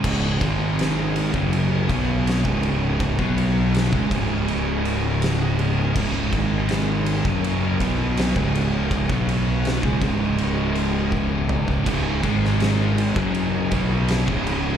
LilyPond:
<<
  \new Staff \with { instrumentName = "Tonewheel organ" } { \time 4/4 \key gis \minor \tempo 4 = 81 <cis' gis' dis''>8 <gis dis' ais'>4~ <gis dis' ais'>16 <cis' gis' dis''>2~ <cis' gis' dis''>16~ | <cis' gis' dis''>16 <b fis' cis''>4 <cis' gis' dis''>2~ <cis' gis' dis''>8.~ | <cis' gis' dis''>8 <gis dis' ais'>4~ <gis dis' ais'>16 <cis' gis' dis''>2~ <cis' gis' dis''>16~ | <cis' gis' dis''>16 <b fis' cis''>4 <cis' gis' dis''>2~ <cis' gis' dis''>8.~ |
<cis' gis' dis''>8 <gis dis' ais'>4~ <gis dis' ais'>16 <cis' gis' dis''>2~ <cis' gis' dis''>16 | }
  \new Staff \with { instrumentName = "Distorted electric guitar" } { \clef bass \time 4/4 \key gis \minor <cis, gis, cis>8 <gis, dis gis>4~ <gis, dis gis>16 <fis, cis fis>8. <b, fis b>8. <cis, gis, cis>8.~ | <cis, gis, cis>16 <b, fis b>4 <cis gis>16 <cis, gis, cis>2~ <cis, gis, cis>8 | <cis, gis, cis>8 <gis, dis gis>4~ <gis, dis gis>16 <fis, cis fis>8. <b, fis b>8. <cis, gis, cis>8.~ | <cis, gis, cis>16 <b, fis b>4 <cis gis>16 <cis, gis, cis>2~ <cis, gis, cis>8 |
<cis, gis, cis>8 <gis, dis gis>4~ <gis, dis gis>16 <fis, cis fis>8. <b, fis b>8. <cis, gis, cis>8. | }
  \new Staff \with { instrumentName = "Distorted electric guitar" } { \clef bass \time 4/4 \key gis \minor <cis, gis, cis>8 <gis, dis gis>4~ <gis, dis gis>16 <fis, cis fis>8. <b, fis b>8. <cis, gis, cis>8.~ | <cis, gis, cis>16 <b, fis b>4 <cis gis>16 <cis, gis, cis>2~ <cis, gis, cis>8 | <cis, gis, cis>8 <gis, dis gis>4~ <gis, dis gis>16 <fis, cis fis>8. <b, fis b>8. <cis, gis, cis>8.~ | <cis, gis, cis>16 <b, fis b>4 <cis gis>16 <cis, gis, cis>2~ <cis, gis, cis>8 |
<cis, gis, cis>8 <gis, dis gis>4~ <gis, dis gis>16 <fis, cis fis>8. <b, fis b>8. <cis, gis, cis>8. | }
  \new Staff \with { instrumentName = "Overdriven electric guitar" } { \clef bass \time 4/4 \key gis \minor r1 | r1 | r1 | r1 |
<cis, gis, cis>8 <gis, dis gis>4~ <gis, dis gis>16 <fis, cis fis>8. <b, fis b>8. <cis, gis, cis>8. | }
  \new Staff \with { instrumentName = "Fingered electric bass" } { \clef bass \time 4/4 \key gis \minor cis,,8 gis,,4~ gis,,16 fis,,8. b,,8. cis,,8.~ | cis,,16 b,,4 cis,16 cis,,2~ cis,,8 | cis,,8 gis,,4~ gis,,16 fis,,8. b,,8. cis,,8.~ | cis,,16 b,,4 cis,16 cis,,2~ cis,,8 |
cis,,8 gis,,4~ gis,,16 fis,,8. b,,8. cis,,8. | }
  \new DrumStaff \with { instrumentName = "Drums" } \drummode { \time 4/4 <cymc bd>8 <bd cymr>8 <cymr sn>8 cymr16 bd16 cymr8 <bd cymr>8 <cymr sn>16 bd16 cymr8 | <bd cymr>16 bd16 cymr8 <cymr sn>16 bd16 <bd cymr>8 cymr8 cymr8 <cymr sn>8 cymr8 | <cymc bd>8 <bd cymr>8 <cymr sn>8 cymr16 bd16 cymr8 <bd cymr>8 <cymr sn>16 bd16 cymr8 | <bd cymr>16 bd16 cymr8 <cymr sn>16 bd16 <bd cymr>8 cymr8 cymr8 bd8 toml16 bd16 |
<cymc bd cymr>8 <bd cymr>16 sn16 <cymr sn>8 cymr16 bd16 cymr8 <bd cymr>8 <cymr sn>16 bd16 cymr8 | }
>>